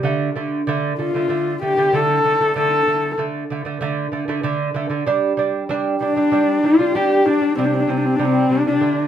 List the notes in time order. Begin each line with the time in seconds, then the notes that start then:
0.03 D3 A3
0.36 D3 A3
0.67 D3 A3
0.99 D3 A3 F4
1.14 D3 A3
1.29 D3 A3
1.62 D3 A3 G4
1.77 D3 A3
1.93 D3 A3 A4
2.24 D3 A3
2.40 D3 A3
2.56 D3 A3 A4
2.87 D3 A3
3.18 D3 A3
3.50 D3 A3
3.65 D3 A3
3.81 D3 A3
4.12 D3 A3
4.28 D3 A3
4.43 D3 A3
4.74 D3 A3
4.90 D3 A3
5.06 G3 D4
5.37 G3 D4
5.69 G3 D4
6.01 G3 D4
6.16 G3 D4
6.32 G3 D4
6.64 G3 D4 F4
6.79 G3 D4
6.95 G3 D4 G4
7.26 G3 D4
7.41 G3 D4
7.57 C3 G3 C4
7.65 D4
7.74 C4
7.80 D4
7.87 C3 G3 C4
7.97 D4
8.05 C4
8.16 C3 G3 D4
8.24 C4
8.49 C3 G3 D4
8.66 C3 G3 D4
8.81 D3 A3